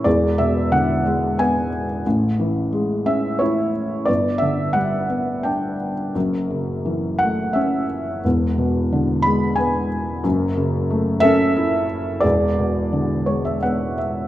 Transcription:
0.04 E1 E2 G#4 D5
0.38 B2 E5
0.72 D3 F#5
1.06 G#3
1.38 B3 G#5
2.06 A1 A2
2.40 E3
2.73 G#3
3.06 C#4 E5
3.39 E4 C#5
4.06 G1 G2 B4 D5
4.38 D3 E5
4.73 G3 F#5
5.09 B3
5.43 D4 G5
6.15 F#1 F#2
6.50 C#3
6.85 E3
7.19 A3 F#5
7.53 C#4 E5
8.25 E1 E2
8.58 B2
8.92 D3
9.22 G#3 B5
9.56 B3 G#5
10.24 F#1 F#2
10.57 C#3
10.91 A3
11.20 A4 E5
11.24 C#4
11.56 E4
12.20 E1 E2 G#4 D5
12.59 B2
12.93 D3
13.26 G#3 C#5
13.45 E5
13.63 B3 F#5
13.98 E5

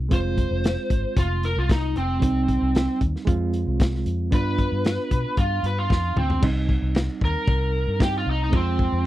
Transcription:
0.09 F1 G#3 C4 F4, kick, closed hi-hat
0.14 C5
0.37 kick, closed hi-hat
0.51 F1
0.64 snare, closed hi-hat
0.90 G#1, kick, closed hi-hat
1.16 F1 F4, kick, closed hi-hat
1.43 A#4, closed hi-hat
1.57 C2 F4
1.69 D#4, kick, snare, closed hi-hat
1.96 F1 C4, closed hi-hat
2.20 C2 G3 C4 D#4, kick, closed hi-hat
2.48 kick, closed hi-hat
2.62 C2
2.75 snare, closed hi-hat
3.01 D#2, kick, closed hi-hat
3.16 snare
3.25 F2 G#3 C4 F4, kick, closed hi-hat
3.53 closed hi-hat
3.67 C2
3.80 kick, snare, closed hi-hat
3.95 snare
4.06 F2, closed hi-hat
4.31 G2 B3 D4 F4 B4, kick, closed hi-hat
4.58 kick, closed hi-hat
4.72 G2
4.85 snare, closed hi-hat
5.11 B2, kick, closed hi-hat
5.37 G2 F4, kick, closed hi-hat
5.63 G2 B4, closed hi-hat
5.79 F4
5.90 F2 F4, kick, snare
6.16 D2 C4, mid tom
6.30 floor tom
6.41 C2 G3 C4 D#4, kick, crash
6.69 kick
6.82 C2
6.95 snare, ride bell
7.21 D#2 A#4, kick
7.47 C2, kick, ride bell
7.87 G2
7.98 G3 C4 D#4, kick, snare, ride bell
8.03 G4
8.18 F4
8.26 C2
8.31 D#4
8.44 D#4
8.50 F2 G#3 C4, kick, ride bell
8.54 C4 F4
8.79 kick
8.92 F2

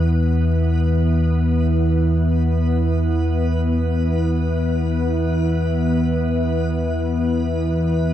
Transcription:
Already playing: E2 E3 B3 E4 B4
0.16 B3 B4

